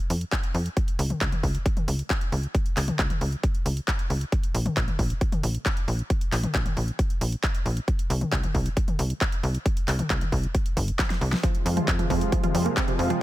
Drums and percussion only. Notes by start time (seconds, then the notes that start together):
0.10 open hi-hat
0.21 closed hi-hat
0.32 kick, clap, closed hi-hat
0.43 closed hi-hat
0.55 open hi-hat
0.66 closed hi-hat
0.77 kick, closed hi-hat
0.88 closed hi-hat
0.99 open hi-hat
1.10 closed hi-hat, mid tom
1.21 kick, clap, closed hi-hat
1.32 closed hi-hat, mid tom
1.43 kick, open hi-hat
1.55 closed hi-hat
1.66 kick, closed hi-hat
1.77 closed hi-hat, mid tom
1.88 open hi-hat
1.99 closed hi-hat
2.10 kick, clap, closed hi-hat
2.21 closed hi-hat
2.32 open hi-hat
2.43 closed hi-hat
2.55 kick, closed hi-hat
2.66 closed hi-hat
2.77 clap, open hi-hat
2.88 closed hi-hat, mid tom
2.99 kick, clap, closed hi-hat
3.10 closed hi-hat, mid tom
3.21 open hi-hat
3.32 closed hi-hat
3.43 kick, closed hi-hat
3.55 closed hi-hat
3.66 open hi-hat
3.77 closed hi-hat
3.88 kick, clap, closed hi-hat
3.99 closed hi-hat
4.10 open hi-hat
4.21 closed hi-hat
4.32 kick, closed hi-hat
4.43 closed hi-hat
4.55 open hi-hat
4.66 closed hi-hat, mid tom
4.77 kick, clap, closed hi-hat
4.88 closed hi-hat, mid tom
4.99 kick, open hi-hat
5.10 closed hi-hat
5.21 kick, closed hi-hat
5.32 closed hi-hat, mid tom
5.43 open hi-hat
5.55 closed hi-hat
5.66 kick, clap, closed hi-hat
5.77 closed hi-hat
5.88 open hi-hat
5.99 closed hi-hat
6.10 kick, closed hi-hat
6.21 closed hi-hat
6.32 clap, open hi-hat
6.43 closed hi-hat, mid tom
6.55 kick, clap, closed hi-hat
6.66 closed hi-hat, mid tom
6.77 open hi-hat
6.88 closed hi-hat
6.99 kick, closed hi-hat
7.10 closed hi-hat
7.21 open hi-hat
7.32 closed hi-hat
7.43 kick, clap, closed hi-hat
7.55 closed hi-hat
7.66 open hi-hat
7.77 closed hi-hat
7.88 kick, closed hi-hat
7.99 closed hi-hat
8.10 open hi-hat
8.21 closed hi-hat, mid tom
8.32 kick, clap, closed hi-hat
8.43 closed hi-hat, mid tom
8.55 kick, open hi-hat
8.66 closed hi-hat
8.77 kick, closed hi-hat
8.88 closed hi-hat, mid tom
8.99 open hi-hat
9.10 closed hi-hat
9.21 kick, clap, closed hi-hat
9.32 closed hi-hat
9.43 open hi-hat
9.55 closed hi-hat
9.66 kick, closed hi-hat
9.77 closed hi-hat
9.88 clap, open hi-hat
9.99 closed hi-hat, mid tom
10.10 kick, clap, closed hi-hat
10.21 closed hi-hat, mid tom
10.32 kick, open hi-hat
10.43 closed hi-hat
10.55 kick, closed hi-hat
10.66 closed hi-hat
10.77 kick, open hi-hat
10.88 closed hi-hat
10.99 kick, snare, clap, closed hi-hat
11.10 snare, closed hi-hat
11.21 open hi-hat
11.32 snare, closed hi-hat
11.43 kick, closed hi-hat
11.55 closed hi-hat
11.66 open hi-hat
11.77 closed hi-hat, mid tom
11.88 kick, clap, closed hi-hat
11.99 closed hi-hat, mid tom
12.10 kick, open hi-hat
12.21 closed hi-hat
12.32 kick, closed hi-hat
12.44 closed hi-hat, mid tom
12.55 open hi-hat
12.77 kick, clap, closed hi-hat
12.88 closed hi-hat
12.99 open hi-hat
13.10 closed hi-hat